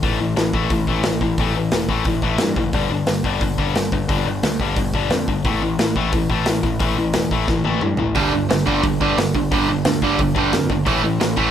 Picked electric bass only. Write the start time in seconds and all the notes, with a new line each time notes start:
0.03 A1
0.20 A1
0.37 A1
0.54 A1
0.71 A1
0.87 A1
1.05 A1
1.21 A1
1.38 A1
1.54 A1
1.72 E1
1.89 A1
2.06 A1
2.22 A1
2.40 G2
2.57 F#1
2.73 G1
2.90 G1
3.08 G1
3.24 G1
3.41 G1
3.58 G1
3.76 G1
3.92 G1
4.09 G1
4.26 G1
4.43 D2
4.60 G1
4.77 G1
4.94 G1
5.10 F2
5.28 G1
5.45 A1
5.61 A1
5.78 A1
5.96 A1
6.13 A1
6.30 A1
6.46 A1
6.63 A1
6.80 A1
6.98 A1
7.15 E1
7.31 A1
7.48 A1
7.65 A1
7.83 G2
8.01 A1
8.16 G1
8.35 G1
8.51 G1
8.67 G1
8.83 G1
9.01 G1
9.18 G1
9.35 G1
9.52 G1
9.68 G1
9.85 D2
10.02 G1
10.20 G1
10.36 G1
10.53 F2
10.70 G1
10.87 A1
11.04 A1
11.21 A1
11.37 A1